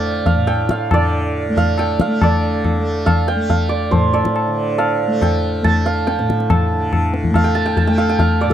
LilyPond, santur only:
\new Staff \with { instrumentName = "Santur" } { \time 5/4 \tempo 4 = 140 r8 f''8 g''8 f''8 d''8 r4 f''8 g''8 f''8 | d''4. r8 f''8 g''8 f''8 d''8 c''8 d''8~ | d''8 r8 f''4 g''4 a''8 f''8 g''4 | a''4. r8 f''16 g''16 a''16 g''16 a''16 g''16 f''16 g''16 f''8 d''16 a'16 | }